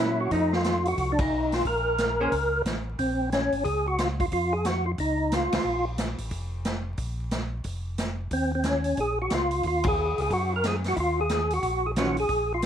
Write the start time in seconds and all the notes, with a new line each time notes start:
Already playing: A#2 F#3 C#4 E4 A#4
0.20 F#4
0.31 F2 F3 A3 D#4, kick, open hi-hat
0.53 F4, snare
0.64 snare, closed hi-hat
0.85 F#4, open hi-hat
0.97 C2, kick, open hi-hat
1.12 D4
1.19 D#4, kick, ride
1.31 B1
1.52 F4, snare, open hi-hat
1.65 A#1 A#4, kick, open hi-hat
1.98 snare, closed hi-hat
2.20 A#3 C#4 G#4 C5
2.31 C#2, kick, open hi-hat
2.65 A1, snare, closed hi-hat
2.99 A#1 C4, kick, open hi-hat
3.32 C#4, snare, closed hi-hat
3.52 G#1, open hi-hat
3.64 C#2 G#4, kick, open hi-hat
3.88 F#4
3.98 F4, snare, closed hi-hat
4.20 F4, kick, open hi-hat
4.32 F2 F4, kick, open hi-hat
4.53 G#4
4.65 F#4, snare, closed hi-hat
4.86 F4
4.98 C#2 D#4, kick, open hi-hat
5.32 F4, snare, closed hi-hat
5.52 C#2 F4, snare, ride
5.65 A#1
5.98 snare, closed hi-hat
6.18 A1, open hi-hat
6.31 F1, kick, open hi-hat
6.65 snare, closed hi-hat
6.97 A#1, kick, open hi-hat
7.31 snare, closed hi-hat
7.64 F1, kick, open hi-hat
7.98 snare, closed hi-hat
8.31 D#2 C4, kick, open hi-hat
8.55 C4
8.64 C#4, snare, closed hi-hat
8.84 open hi-hat
8.97 A#1 G#4, kick, open hi-hat
9.22 F#4
9.30 C#2, snare, closed hi-hat
9.34 F4
9.51 open hi-hat
9.63 D#2, kick, open hi-hat
9.67 F4
9.84 kick, ride
9.88 G#4
10.18 C#2, open hi-hat
10.22 G#4
10.30 F#2 F#4, kick, open hi-hat
10.56 A#4
10.64 G#4, snare, closed hi-hat
10.84 snare, open hi-hat
10.88 F#4
10.96 D#2 E4 F4, kick, open hi-hat
11.21 G#4
11.29 snare, closed hi-hat
11.50 F#4, open hi-hat
11.62 A#1, kick, open hi-hat
11.87 G#4
11.96 D#3 F#3 C#4 F4 F#4, snare, closed hi-hat
12.17 G#4, open hi-hat
12.29 A#1, kick, open hi-hat
12.54 F4
12.62 snare, closed hi-hat